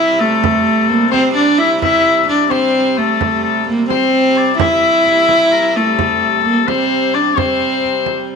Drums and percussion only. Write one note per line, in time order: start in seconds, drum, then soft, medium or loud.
0.44 frame drum medium
0.90 frame drum soft
1.14 frame drum medium
1.82 frame drum medium
2.29 frame drum soft
2.51 frame drum soft
2.98 frame drum soft
3.21 frame drum medium
3.68 frame drum soft
3.90 frame drum medium
4.60 frame drum medium
5.06 frame drum soft
5.29 frame drum medium
5.99 frame drum medium
6.45 frame drum soft
6.68 frame drum medium
7.38 frame drum medium
7.84 frame drum soft
8.06 frame drum medium